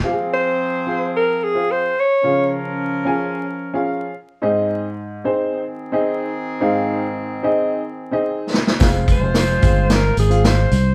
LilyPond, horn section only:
\new Staff \with { instrumentName = "Horn section" } { \time 4/4 \key f \minor \tempo 4 = 110 <f c' aes'>2.~ <f c' aes'>8 r8 | <f des' bes'>2.~ <f des' bes'>8 r8 | r2 <ees c' aes'>2~ | <ees c' aes'>2.~ <ees c' aes'>8 r8 |
<aes f' c''>2.~ <aes f' c''>8 r8 | }